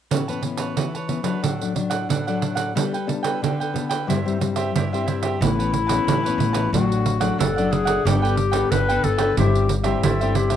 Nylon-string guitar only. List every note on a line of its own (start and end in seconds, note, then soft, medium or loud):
0.11 0.74 A2 medium
0.11 0.23 E3 soft
0.11 0.23 B3 soft
0.11 0.23 C#4 medium
0.29 0.40 E3 medium
0.29 0.40 B3 medium
0.29 0.40 C#4 medium
0.42 0.75 E3 medium
0.42 0.86 B3 medium
0.42 0.86 C#4 medium
0.76 1.07 E3 medium
1.08 1.19 E3 medium
1.08 1.20 B3 medium
1.08 1.20 C#4 medium
1.23 1.53 F#3 medium
1.23 1.53 A3 medium
1.23 1.54 D4 medium
1.42 2.06 A2 medium
1.61 1.72 F#3 medium
1.61 1.72 A3 medium
1.61 1.72 D4 medium
1.75 2.20 F#3 soft
1.75 2.21 A3 soft
1.75 2.21 D4 medium
2.10 2.73 A2 medium
2.27 2.71 F#3 medium
2.27 2.71 A3 medium
2.27 2.71 D4 medium
2.75 3.39 G3 medium
2.75 2.95 B3 medium
2.75 2.96 D4 medium
2.75 2.96 A4 medium
3.07 3.69 B3 medium
3.07 3.69 D4 medium
3.07 3.69 A4 medium
3.42 4.05 D3 medium
3.74 3.96 B3 medium
3.74 3.96 D4 soft
3.74 3.96 A4 medium
4.07 4.71 G2 medium
4.07 4.18 G3 medium
4.07 4.18 C4 medium
4.07 4.19 E4 medium
4.25 4.37 G3 medium
4.25 4.37 C4 medium
4.25 4.37 E4 medium
4.41 4.73 G3 medium
4.41 4.72 C4 soft
4.41 4.73 E4 soft
4.74 5.38 G2 medium
4.93 5.37 G3 medium
4.93 5.37 C4 medium
4.93 5.37 E4 medium
5.42 6.05 A2 medium
5.42 5.73 E3 soft
5.42 5.73 B3 medium
5.42 5.73 C#4 medium
5.89 6.07 E3 medium
5.89 6.18 B3 medium
5.89 6.18 C#4 medium
6.08 6.25 E3 medium
6.26 6.69 E3 medium
6.26 6.70 B3 medium
6.26 6.70 C#4 medium
6.74 7.37 A2 medium
6.74 7.18 F#3 medium
6.74 7.18 A3 medium
6.74 7.19 D4 medium
7.20 7.50 F#3 medium
7.20 7.50 A3 medium
7.20 7.50 D4 medium
7.41 8.03 A2 medium
7.58 8.02 F#3 medium
7.58 8.02 A3 medium
7.58 8.02 D4 medium
8.07 8.69 G3 medium
8.07 8.38 B3 medium
8.07 8.38 D4 medium
8.07 8.38 A4 medium
8.53 8.82 B3 medium
8.53 8.82 D4 medium
8.53 8.82 A4 medium
8.72 9.35 D3 medium
8.90 9.34 B3 medium
8.90 9.34 D4 medium
8.90 9.34 A4 medium
9.38 10.01 G2 medium
9.38 9.69 G3 medium
9.38 9.69 C4 medium
9.38 9.69 E4 medium
9.84 10.14 G3 medium
9.84 10.14 C4 medium
9.84 10.14 E4 medium
10.04 10.56 G2 medium
10.22 10.56 G3 medium
10.22 10.56 C4 medium
10.22 10.56 E4 medium